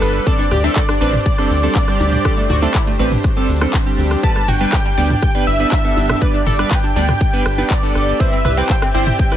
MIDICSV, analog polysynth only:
0, 0, Header, 1, 2, 480
1, 0, Start_track
1, 0, Key_signature, 1, "major"
1, 0, Tempo, 495868
1, 257, Time_signature, 4, 2, 24, 8
1, 9069, End_track
2, 0, Start_track
2, 0, Title_t, "Analog polysynth"
2, 0, Program_c, 0, 90
2, 0, Note_on_c, 0, 55, 81
2, 0, Note_on_c, 0, 59, 73
2, 0, Note_on_c, 0, 62, 73
2, 0, Note_on_c, 0, 69, 91
2, 229, Note_off_c, 0, 55, 0
2, 229, Note_off_c, 0, 59, 0
2, 229, Note_off_c, 0, 62, 0
2, 229, Note_off_c, 0, 69, 0
2, 258, Note_on_c, 0, 55, 86
2, 258, Note_on_c, 0, 60, 79
2, 258, Note_on_c, 0, 62, 78
2, 258, Note_on_c, 0, 69, 93
2, 413, Note_off_c, 0, 55, 0
2, 413, Note_off_c, 0, 60, 0
2, 413, Note_off_c, 0, 62, 0
2, 413, Note_off_c, 0, 69, 0
2, 619, Note_on_c, 0, 55, 96
2, 619, Note_on_c, 0, 60, 88
2, 619, Note_on_c, 0, 62, 85
2, 619, Note_on_c, 0, 69, 107
2, 714, Note_off_c, 0, 55, 0
2, 714, Note_off_c, 0, 60, 0
2, 714, Note_off_c, 0, 62, 0
2, 714, Note_off_c, 0, 69, 0
2, 977, Note_on_c, 0, 55, 92
2, 977, Note_on_c, 0, 60, 84
2, 977, Note_on_c, 0, 62, 88
2, 977, Note_on_c, 0, 71, 103
2, 1075, Note_off_c, 0, 55, 0
2, 1075, Note_off_c, 0, 60, 0
2, 1075, Note_off_c, 0, 62, 0
2, 1075, Note_off_c, 0, 71, 0
2, 1339, Note_on_c, 0, 55, 96
2, 1339, Note_on_c, 0, 60, 88
2, 1339, Note_on_c, 0, 62, 89
2, 1339, Note_on_c, 0, 69, 108
2, 1434, Note_off_c, 0, 69, 0
2, 1435, Note_off_c, 0, 55, 0
2, 1435, Note_off_c, 0, 60, 0
2, 1435, Note_off_c, 0, 62, 0
2, 1579, Note_on_c, 0, 62, 79
2, 1580, Note_on_c, 0, 55, 84
2, 1580, Note_on_c, 0, 60, 78
2, 1580, Note_on_c, 0, 69, 92
2, 1675, Note_off_c, 0, 55, 0
2, 1675, Note_off_c, 0, 60, 0
2, 1675, Note_off_c, 0, 62, 0
2, 1675, Note_off_c, 0, 69, 0
2, 1819, Note_on_c, 0, 55, 80
2, 1819, Note_on_c, 0, 62, 70
2, 1820, Note_on_c, 0, 60, 74
2, 1820, Note_on_c, 0, 67, 86
2, 2149, Note_off_c, 0, 55, 0
2, 2150, Note_off_c, 0, 60, 0
2, 2150, Note_off_c, 0, 62, 0
2, 2150, Note_off_c, 0, 67, 0
2, 2178, Note_on_c, 0, 69, 94
2, 2179, Note_on_c, 0, 55, 86
2, 2179, Note_on_c, 0, 60, 80
2, 2179, Note_on_c, 0, 62, 78
2, 2333, Note_off_c, 0, 55, 0
2, 2333, Note_off_c, 0, 60, 0
2, 2333, Note_off_c, 0, 62, 0
2, 2333, Note_off_c, 0, 69, 0
2, 2539, Note_on_c, 0, 55, 93
2, 2539, Note_on_c, 0, 60, 87
2, 2539, Note_on_c, 0, 62, 88
2, 2539, Note_on_c, 0, 69, 110
2, 2635, Note_off_c, 0, 55, 0
2, 2635, Note_off_c, 0, 60, 0
2, 2635, Note_off_c, 0, 62, 0
2, 2635, Note_off_c, 0, 69, 0
2, 2897, Note_on_c, 0, 60, 87
2, 2897, Note_on_c, 0, 71, 103
2, 2898, Note_on_c, 0, 55, 92
2, 2898, Note_on_c, 0, 62, 83
2, 2995, Note_off_c, 0, 55, 0
2, 2995, Note_off_c, 0, 60, 0
2, 2995, Note_off_c, 0, 62, 0
2, 2995, Note_off_c, 0, 71, 0
2, 3259, Note_on_c, 0, 55, 98
2, 3259, Note_on_c, 0, 60, 93
2, 3259, Note_on_c, 0, 62, 91
2, 3259, Note_on_c, 0, 69, 111
2, 3354, Note_off_c, 0, 55, 0
2, 3354, Note_off_c, 0, 60, 0
2, 3354, Note_off_c, 0, 62, 0
2, 3354, Note_off_c, 0, 69, 0
2, 3498, Note_on_c, 0, 69, 98
2, 3499, Note_on_c, 0, 55, 87
2, 3499, Note_on_c, 0, 60, 78
2, 3499, Note_on_c, 0, 62, 81
2, 3594, Note_off_c, 0, 60, 0
2, 3594, Note_off_c, 0, 62, 0
2, 3594, Note_off_c, 0, 69, 0
2, 3595, Note_off_c, 0, 55, 0
2, 3739, Note_on_c, 0, 55, 78
2, 3739, Note_on_c, 0, 60, 70
2, 3739, Note_on_c, 0, 62, 71
2, 3739, Note_on_c, 0, 67, 90
2, 4069, Note_off_c, 0, 55, 0
2, 4069, Note_off_c, 0, 60, 0
2, 4069, Note_off_c, 0, 62, 0
2, 4069, Note_off_c, 0, 67, 0
2, 4098, Note_on_c, 0, 55, 83
2, 4098, Note_on_c, 0, 59, 76
2, 4098, Note_on_c, 0, 62, 76
2, 4098, Note_on_c, 0, 71, 93
2, 4253, Note_off_c, 0, 55, 0
2, 4253, Note_off_c, 0, 59, 0
2, 4253, Note_off_c, 0, 62, 0
2, 4253, Note_off_c, 0, 71, 0
2, 4458, Note_on_c, 0, 55, 94
2, 4458, Note_on_c, 0, 71, 107
2, 4459, Note_on_c, 0, 59, 86
2, 4459, Note_on_c, 0, 62, 89
2, 4554, Note_off_c, 0, 55, 0
2, 4554, Note_off_c, 0, 59, 0
2, 4554, Note_off_c, 0, 62, 0
2, 4554, Note_off_c, 0, 71, 0
2, 4817, Note_on_c, 0, 55, 93
2, 4817, Note_on_c, 0, 59, 85
2, 4817, Note_on_c, 0, 62, 85
2, 4817, Note_on_c, 0, 74, 108
2, 4914, Note_off_c, 0, 74, 0
2, 4915, Note_off_c, 0, 55, 0
2, 4915, Note_off_c, 0, 59, 0
2, 4915, Note_off_c, 0, 62, 0
2, 5177, Note_on_c, 0, 62, 88
2, 5178, Note_on_c, 0, 55, 98
2, 5178, Note_on_c, 0, 59, 89
2, 5178, Note_on_c, 0, 71, 112
2, 5274, Note_off_c, 0, 55, 0
2, 5274, Note_off_c, 0, 59, 0
2, 5274, Note_off_c, 0, 62, 0
2, 5274, Note_off_c, 0, 71, 0
2, 5419, Note_on_c, 0, 55, 86
2, 5419, Note_on_c, 0, 59, 82
2, 5419, Note_on_c, 0, 62, 81
2, 5420, Note_on_c, 0, 71, 93
2, 5514, Note_off_c, 0, 55, 0
2, 5514, Note_off_c, 0, 59, 0
2, 5515, Note_off_c, 0, 62, 0
2, 5515, Note_off_c, 0, 71, 0
2, 5659, Note_on_c, 0, 55, 77
2, 5659, Note_on_c, 0, 59, 70
2, 5659, Note_on_c, 0, 62, 72
2, 5659, Note_on_c, 0, 69, 87
2, 5989, Note_off_c, 0, 55, 0
2, 5989, Note_off_c, 0, 59, 0
2, 5989, Note_off_c, 0, 62, 0
2, 5989, Note_off_c, 0, 69, 0
2, 6017, Note_on_c, 0, 59, 78
2, 6018, Note_on_c, 0, 55, 83
2, 6018, Note_on_c, 0, 62, 77
2, 6018, Note_on_c, 0, 71, 94
2, 6173, Note_off_c, 0, 55, 0
2, 6173, Note_off_c, 0, 59, 0
2, 6173, Note_off_c, 0, 62, 0
2, 6173, Note_off_c, 0, 71, 0
2, 6379, Note_on_c, 0, 55, 95
2, 6379, Note_on_c, 0, 59, 88
2, 6379, Note_on_c, 0, 62, 91
2, 6379, Note_on_c, 0, 71, 108
2, 6474, Note_off_c, 0, 55, 0
2, 6474, Note_off_c, 0, 59, 0
2, 6474, Note_off_c, 0, 62, 0
2, 6474, Note_off_c, 0, 71, 0
2, 6737, Note_on_c, 0, 59, 83
2, 6737, Note_on_c, 0, 62, 86
2, 6738, Note_on_c, 0, 55, 94
2, 6738, Note_on_c, 0, 74, 103
2, 6835, Note_off_c, 0, 55, 0
2, 6835, Note_off_c, 0, 59, 0
2, 6835, Note_off_c, 0, 62, 0
2, 6835, Note_off_c, 0, 74, 0
2, 7098, Note_on_c, 0, 55, 99
2, 7098, Note_on_c, 0, 59, 89
2, 7099, Note_on_c, 0, 62, 89
2, 7099, Note_on_c, 0, 71, 105
2, 7194, Note_off_c, 0, 55, 0
2, 7194, Note_off_c, 0, 59, 0
2, 7194, Note_off_c, 0, 62, 0
2, 7194, Note_off_c, 0, 71, 0
2, 7338, Note_on_c, 0, 55, 88
2, 7338, Note_on_c, 0, 59, 79
2, 7338, Note_on_c, 0, 62, 80
2, 7338, Note_on_c, 0, 71, 95
2, 7434, Note_off_c, 0, 55, 0
2, 7434, Note_off_c, 0, 59, 0
2, 7434, Note_off_c, 0, 62, 0
2, 7434, Note_off_c, 0, 71, 0
2, 7578, Note_on_c, 0, 62, 73
2, 7578, Note_on_c, 0, 69, 85
2, 7579, Note_on_c, 0, 55, 77
2, 7579, Note_on_c, 0, 59, 75
2, 7909, Note_off_c, 0, 55, 0
2, 7909, Note_off_c, 0, 59, 0
2, 7909, Note_off_c, 0, 62, 0
2, 7909, Note_off_c, 0, 69, 0
2, 7938, Note_on_c, 0, 55, 85
2, 7938, Note_on_c, 0, 60, 78
2, 7938, Note_on_c, 0, 64, 80
2, 7938, Note_on_c, 0, 71, 95
2, 8093, Note_off_c, 0, 55, 0
2, 8093, Note_off_c, 0, 60, 0
2, 8093, Note_off_c, 0, 64, 0
2, 8093, Note_off_c, 0, 71, 0
2, 8298, Note_on_c, 0, 55, 94
2, 8298, Note_on_c, 0, 60, 91
2, 8298, Note_on_c, 0, 64, 91
2, 8298, Note_on_c, 0, 71, 104
2, 8394, Note_off_c, 0, 55, 0
2, 8394, Note_off_c, 0, 60, 0
2, 8394, Note_off_c, 0, 64, 0
2, 8394, Note_off_c, 0, 71, 0
2, 8657, Note_on_c, 0, 72, 104
2, 8658, Note_on_c, 0, 55, 92
2, 8658, Note_on_c, 0, 60, 85
2, 8658, Note_on_c, 0, 64, 87
2, 8755, Note_off_c, 0, 55, 0
2, 8755, Note_off_c, 0, 60, 0
2, 8755, Note_off_c, 0, 64, 0
2, 8755, Note_off_c, 0, 72, 0
2, 9018, Note_on_c, 0, 55, 100
2, 9018, Note_on_c, 0, 60, 89
2, 9018, Note_on_c, 0, 64, 90
2, 9018, Note_on_c, 0, 71, 111
2, 9069, Note_off_c, 0, 55, 0
2, 9069, Note_off_c, 0, 60, 0
2, 9069, Note_off_c, 0, 64, 0
2, 9069, Note_off_c, 0, 71, 0
2, 9069, End_track
0, 0, End_of_file